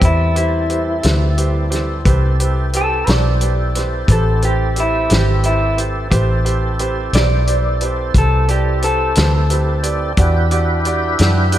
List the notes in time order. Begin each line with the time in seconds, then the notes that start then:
Already playing: G3 C4 E4 A4
0.01 E2 G4 B4 C5, kick, closed hi-hat
0.05 E4
0.35 E4 G4 B4 C5, closed hi-hat
0.70 G4 B4 C5, closed hi-hat
1.03 D2 G4 B4 C5, snare, closed hi-hat
1.38 G4 B4 C5, closed hi-hat
1.70 G4 B4 C5, snare, closed hi-hat
2.05 C2 C4 E4 G4 A4 B4 C5, kick, closed hi-hat
2.40 G4 B4 C5, closed hi-hat
2.73 G4 A4 B4 C5, closed hi-hat
3.07 B1 G4 B4 C5 D5, snare, closed hi-hat
3.41 G4 B4 C5, closed hi-hat
3.75 G4 B4 C5, snare, closed hi-hat
4.08 A1 G4 A4 B4 C5, kick, closed hi-hat
4.42 G4 B4 C5, closed hi-hat
4.76 G4 B4 C5, closed hi-hat
4.80 E4
5.09 G#1 G4 B4 C5, snare, closed hi-hat
5.43 E4 G4 B4 C5, closed hi-hat
5.78 G4 B4 C5, closed hi-hat
6.10 A1 C4 E4 G4 A4 B4 C5, kick, closed hi-hat
6.45 G4 B4 C5, closed hi-hat
6.79 G4 B4 C5, closed hi-hat
7.13 B1 G4 B4 C5 D5, snare, closed hi-hat
7.47 G4 B4 C5, closed hi-hat
7.81 G4 B4 C5, closed hi-hat
8.14 C2 G4 A4 B4 C5, kick, closed hi-hat
8.48 G4 B4 D5, closed hi-hat
8.82 G4 A4 B4 C5, closed hi-hat
9.15 D2 G4 B4 C5, snare, closed hi-hat
9.50 G4 B4 C5, closed hi-hat
9.83 G4 B4 D5, closed hi-hat
10.17 E2 D4 E4 F#4 G4 B4 D5, kick, closed hi-hat
10.51 F#4 G4 D5, closed hi-hat
10.85 F#4 G4 D5, closed hi-hat
11.19 F#2 F#4 G4 D5, snare, closed hi-hat
11.52 F#4 G4 D5, closed hi-hat